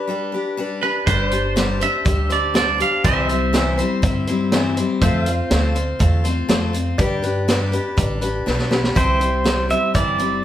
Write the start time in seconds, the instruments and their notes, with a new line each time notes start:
Already playing: pedal steel guitar B4 D5
0.07 steel-string acoustic guitar G3 D4 G4 B4
0.32 steel-string acoustic guitar D4 G4 B4
0.57 steel-string acoustic guitar G3 D4 G4 B4
0.81 steel-string acoustic guitar D4 G4 B4, clean electric guitar B4
1.07 upright bass G1, steel-string acoustic guitar G3 D4 G4 C5, pedal steel guitar B4 D5, clean electric guitar C5, kick, closed hi-hat
1.27 pedal steel guitar C5, steel-string acoustic guitar C5
1.31 steel-string acoustic guitar D4 G4, closed hi-hat
1.56 steel-string acoustic guitar G3 D4 G4 C5, snare, closed hi-hat
1.80 steel-string acoustic guitar D4 G4 C5, clean electric guitar E5, closed hi-hat
2.05 upright bass D2, steel-string acoustic guitar G3 D4 G4 C5, kick, closed hi-hat
2.29 steel-string acoustic guitar D4 G4 C5, clean electric guitar D5, closed hi-hat
2.54 steel-string acoustic guitar G3 D4 G4 C5, clean electric guitar D5, snare, closed hi-hat
2.78 steel-string acoustic guitar D4 G4 C5, clean electric guitar F5, closed hi-hat
3.04 upright bass C2, steel-string acoustic guitar C3 E3 G3 C4 E4 C5, pedal steel guitar C5 D5, clean electric guitar E5, kick, closed hi-hat
3.28 steel-string acoustic guitar G3 C4 E4 C5, pedal steel guitar E5, closed hi-hat
3.53 steel-string acoustic guitar C3 E3 G3 C4 E4 C5, snare, closed hi-hat
3.78 steel-string acoustic guitar G3 C4 E4 C5, closed hi-hat
4.02 upright bass G2, steel-string acoustic guitar G3 C4 E4 C5, kick, closed hi-hat
4.27 steel-string acoustic guitar G3 C4 E4 C5, closed hi-hat
4.52 steel-string acoustic guitar C3 E3 G3 C4 E4 C5, snare, closed hi-hat
4.77 steel-string acoustic guitar G3 C4 E4 C5, closed hi-hat
5.01 upright bass F2, steel-string acoustic guitar F3 A3 C4 F4 C5, pedal steel guitar C5 E5, kick, closed hi-hat
5.24 steel-string acoustic guitar C5, pedal steel guitar F5, closed hi-hat
5.28 steel-string acoustic guitar C4 F4
5.51 upright bass D2, steel-string acoustic guitar F3 A3 C4 F4 C5, snare, closed hi-hat
5.75 steel-string acoustic guitar C4 F4 C5, closed hi-hat
5.99 upright bass E2, steel-string acoustic guitar A3 C4 F4 C5, kick, closed hi-hat
6.24 steel-string acoustic guitar C4 F4 C5, closed hi-hat
6.48 upright bass F2, steel-string acoustic guitar F3 A3 C4 F4 C5, snare, closed hi-hat
6.73 steel-string acoustic guitar C4 F4 C5, closed hi-hat
6.98 upright bass G2, steel-string acoustic guitar G3 D4 G4 B4, pedal steel guitar D5 G5, kick, closed hi-hat
7.22 steel-string acoustic guitar D4 G4 B4, closed hi-hat
7.48 steel-string acoustic guitar G3 D4 G4 B4, snare, closed hi-hat
7.72 steel-string acoustic guitar D4 G4 B4, closed hi-hat
7.97 upright bass A1, steel-string acoustic guitar G3 D4 G4 B4, kick, closed hi-hat
8.21 steel-string acoustic guitar D4 G4 B4, closed hi-hat
8.46 upright bass B1, steel-string acoustic guitar G3 D4 G4 B4, snare
8.59 snare
8.71 steel-string acoustic guitar D4 G4 B4, snare
8.84 snare
8.95 upright bass C2, steel-string acoustic guitar C3 E3 G3 C4 E4 C5, pedal steel guitar C5 E5 G5, kick, closed hi-hat
9.20 steel-string acoustic guitar G3 C4 E4 C5, closed hi-hat
9.44 steel-string acoustic guitar G3 C4 E4 C5, snare, closed hi-hat
9.69 steel-string acoustic guitar G3 C4 E4 C5, pedal steel guitar E5, closed hi-hat
9.94 upright bass G1, steel-string acoustic guitar C3 E3 G3 C4 E4 C5, pedal steel guitar D5, kick, closed hi-hat
10.19 steel-string acoustic guitar G3 C4 E4 C5, closed hi-hat